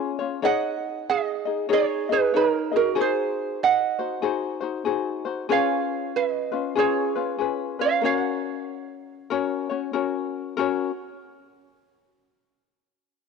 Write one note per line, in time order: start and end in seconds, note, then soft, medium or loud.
0.00 0.19 C#4 medium
0.00 0.19 F4 medium
0.00 0.19 G#4 medium
0.00 0.17 C#5 medium
0.00 0.18 C#5 medium
0.00 0.17 F5 medium
0.19 0.43 C#4 soft
0.19 0.43 F4 soft
0.19 0.41 C#5 medium
0.42 1.47 D#4 medium
0.42 1.47 G#4 medium
0.42 1.46 C#5 medium
0.42 1.45 D#5 medium
0.42 1.04 D#5 medium
0.42 1.09 F#5 loud
1.10 1.68 G#4 medium
1.10 1.73 D#5 medium
1.45 1.68 D#4 soft
1.45 1.68 G#4 soft
1.45 1.69 D#5 soft
1.69 2.09 D#4 medium
1.69 2.08 G#4 medium
1.69 2.09 C#5 medium
1.69 2.08 D#5 medium
1.73 2.12 C#5 medium
2.09 2.33 D#4 soft
2.09 2.33 G#4 soft
2.09 2.33 G#4 medium
2.09 2.36 B4 medium
2.09 2.33 D#5 medium
2.34 2.73 D#4 medium
2.34 2.71 D#4 medium
2.34 2.71 G#4 medium
2.34 2.75 A#4 medium
2.34 2.73 C#5 medium
2.34 2.70 D#5 medium
2.71 2.95 D#4 soft
2.71 2.94 G#4 soft
2.71 2.96 D#5 soft
2.76 2.97 F#4 medium
2.76 2.99 A#4 medium
2.95 3.99 D#4 medium
2.95 3.98 F#4 medium
2.95 4.02 G#4 medium
2.95 3.98 C5 medium
3.01 3.58 G#4 medium
3.01 3.63 C5 medium
3.63 5.24 D#5 medium
3.63 5.24 F#5 medium
3.99 4.21 D#4 soft
3.99 4.22 F#4 soft
3.99 4.22 C5 soft
4.22 4.62 D#4 medium
4.22 4.61 F#4 medium
4.22 4.62 G#4 medium
4.22 4.59 C5 medium
4.61 4.85 D#4 medium
4.61 4.85 F#4 medium
4.61 4.86 C5 medium
4.85 5.26 D#4 medium
4.85 5.25 F#4 medium
4.85 5.25 G#4 medium
4.85 5.24 C5 medium
5.25 5.49 D#4 soft
5.25 5.49 F#4 medium
5.25 5.50 C5 medium
5.49 6.53 C#4 medium
5.49 6.51 F4 medium
5.49 6.53 G#4 medium
5.49 6.50 B4 loud
5.49 6.11 C#5 medium
5.49 6.17 F5 medium
6.16 6.75 B4 medium
6.16 6.79 D#5 medium
6.52 6.75 C#4 soft
6.52 6.75 F4 soft
6.52 6.76 B4 medium
6.75 7.17 C#4 medium
6.75 7.15 F4 medium
6.75 7.16 G#4 medium
6.75 7.77 G#4 medium
6.75 7.14 B4 medium
6.79 7.80 C#5 medium
7.16 7.38 C#4 soft
7.16 7.39 F4 soft
7.16 7.40 B4 soft
7.39 7.80 C#4 medium
7.39 7.79 F4 medium
7.39 7.79 G#4 medium
7.39 7.78 B4 medium
7.79 8.02 C#4 soft
7.79 8.04 F4 soft
7.79 8.01 B4 medium
7.79 8.03 C#5 medium
7.79 8.05 F5 medium
8.01 9.31 C#4 medium
8.01 9.31 F#4 medium
8.01 9.30 A#4 medium
8.01 9.30 C#5 medium
8.01 9.92 C#5 medium
8.06 9.92 F#5 medium
9.30 9.70 C#4 medium
9.30 9.70 F#4 medium
9.30 9.71 A#4 medium
9.30 9.68 C#5 loud
9.70 9.92 C#4 soft
9.70 9.93 F#4 soft
9.70 9.93 C#5 medium
9.93 10.57 C#4 medium
9.93 10.58 F#4 medium
9.93 10.56 A#4 medium
9.93 10.59 C#5 medium
10.57 10.90 C#4 loud
10.57 10.91 F#4 medium
10.57 10.89 A#4 medium
10.57 10.91 C#5 loud